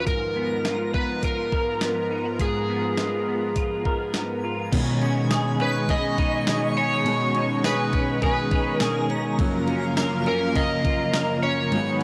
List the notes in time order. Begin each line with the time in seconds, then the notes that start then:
Already playing: D#3 C#4 F4 A#4
0.00 B4
0.05 G#2 F3 B3 A#4 A#5, kick, closed hi-hat
0.36 B3
0.65 F4, snare, closed hi-hat
0.94 B3 B4, kick
1.23 F4 A#4, kick, closed hi-hat
1.52 A#4, kick
1.81 B3, snare, closed hi-hat
2.11 D#4
2.25 F4
2.39 G#2 G#4, kick, closed hi-hat
2.69 B3
2.97 F4, snare, closed hi-hat
3.28 B3
3.56 F4, kick, closed hi-hat
3.85 A#4, kick
4.14 B3, snare, closed hi-hat
4.44 F4
4.72 B2 D#3 G#3 C#4 D#4 C#5, kick, crash, ride
5.01 C#4 B5, ride
5.31 G#4, snare, ride, tambourine
5.59 D#3 G#3 C#4 B4, ride
5.88 B2 D#3 G#3 G#4 D#5 C#6, kick, ride
5.92 C#4
6.18 D#4, kick, ride
6.46 B2 D#3 G#3 G#4, snare, ride, tambourine
6.50 C#4
6.77 C#4 C#5, ride
7.04 B2 D#3, ride
7.08 G#3 C#4
7.35 C#4, ride
7.64 G#4 B4, snare, ride, tambourine
7.93 C#4, kick, ride
8.21 B2 D#3 G#3 G#4 B4, kick, ride
8.26 C#4
8.51 D#4 A#5, kick, ride
8.80 B2 D#3 G#3 G#4 A#4, snare, ride, tambourine
8.84 C#4
9.10 C#4, ride
9.39 F#2 C#3 F3 F#3 A#3 C#4 F4 A#4 F5, kick, ride
9.68 C#4, ride
9.97 A#4, snare, ride, tambourine
10.25 A#3 C#4 A#4, ride
10.30 F3
10.55 C#3 F3 A#3 A#4 D#5, kick, ride
10.59 C#4
10.85 F4, kick, ride
11.13 C#3 F3 A#3 A#4, snare, ride, tambourine
11.17 C#4
11.43 C#4 C#5, ride
11.70 G#2 D#3 F#3 G#3 F#4 B4, ride
11.75 B3 D#4